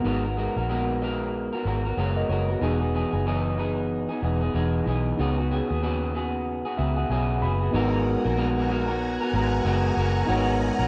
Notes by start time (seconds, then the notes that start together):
0.02 G#1 G#3 B3 D#4 F#4
0.06 F#4 A#4
0.24 B3 F#4 A#4
0.37 G#3 B3 F#4 A#4
0.56 A#1 B3 F#4 A#4
0.69 G#3 B3 F#4 A#4
1.01 G#3 B3 F#4 A#4
1.53 B3 F#4 A#4
1.66 G#1 G#3 B3 F#4 A#4
1.85 B3 F#4 A#4
1.97 F#1 G#3 B3 F#4 A#4 C#5 F#5
2.17 A#4 D#5
2.29 F#1 G#3 B3 F#4 G#4 A#4 C#5
2.49 B3 F#4 A#4 B4
2.59 E1 E3 B3 D#4 F#4
2.63 G#4
2.80 B3 D#4 G#4
2.94 E3 B3 D#4 G#4
3.12 F#1 B3 D#4 G#4
3.26 E3 B3 D#4 G#4
3.58 E3 B3 D#4 G#4
4.09 B3 D#4 G#4
4.22 E1 E3 B3 D#4 G#4
4.41 B3 D#4 G#4
4.54 E1 E3 B3 D#4 G#4
4.86 B1 E3 B3 D#4 G#4
5.15 C#2 C#3 B3 D#4 F#4
5.20 B3 F#4 G#4
5.38 B3 F#4 G#4
5.50 C#3 B3 F#4 G#4
5.68 D#2 B3 F#4 G#4
5.82 C#3 B3 F#4 G#4
6.14 C#3 B3 F#4 G#4
6.65 B3 F#4 G#4
6.77 C#2 C#3 B3 F#4 G#4 E5
6.96 B3 F#4 G#4 F#5
7.10 B1 C#3 B3 F#4 G#4 G#5
7.41 F#1 C#3 B3 F#4 G#4 B5
7.61 B3 F#4 G#4
7.71 G#1 G#3 B3 D#4 F#4 F#5 G#5 A#5
7.75 F#4 A#4
8.25 A#1 B3 F#4 A#4
8.37 G#3 B3 F#4 A#4
8.69 G#3 B3 F#4 A#4
8.88 B3 F#4 A#4
9.21 B3 F#4 A#4
9.33 G#1 G#3 B3 F#4 A#4
9.65 F#1 G#3 B3 F#4 A#4
9.97 F#1 G#3 B3 F#4 A#4
10.25 G#1 G#3 B3 D#4 F#4
10.30 F#4 A#4 C#5
10.79 A#1 B3 F#4 A#4